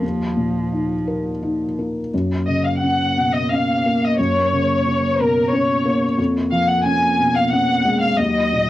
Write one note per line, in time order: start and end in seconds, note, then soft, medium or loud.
0.03 2.08 D#2 soft
0.03 1.74 F3 medium
0.37 0.93 A#2 soft
0.72 1.28 D#4 soft
1.07 1.63 A#4 soft
1.42 1.99 D#4 soft
1.79 2.13 A#3 soft
2.13 4.14 F#2 soft
2.13 6.15 A#3 soft
2.46 3.02 C#3 soft
2.46 2.62 D#5 medium
2.63 2.81 F5 soft
2.79 3.30 F#5 medium
2.83 3.37 C#4 soft
3.17 3.50 B2 soft
3.33 3.50 D#5 medium
3.50 4.05 C#4 soft
3.50 4.01 F5 medium
3.86 4.39 A#3 soft
4.03 4.19 D#5 medium
4.18 6.15 F#2 soft
4.18 5.16 C#5 medium
4.53 5.06 C#3 soft
4.86 5.39 C#4 soft
5.18 5.52 B2 soft
5.18 5.52 A#4 medium
5.51 6.05 C#4 soft
5.51 6.18 C#5 medium
5.86 6.19 A#3 soft
6.18 8.14 F2 medium
6.18 8.14 A#3 medium
6.51 7.06 F3 soft
6.51 6.67 F5 medium
6.67 6.84 F#5 medium
6.83 7.39 C#4 soft
6.83 7.34 G#5 medium
7.19 7.52 B2 soft
7.34 7.51 F5 medium
7.50 8.05 C#4 soft
7.50 8.01 F#5 medium
7.85 8.18 G#3 soft
8.00 8.17 F5 medium
8.15 8.70 D#2 medium
8.15 8.70 F#3 medium
8.15 8.70 D#5 medium
8.53 8.70 A#2 soft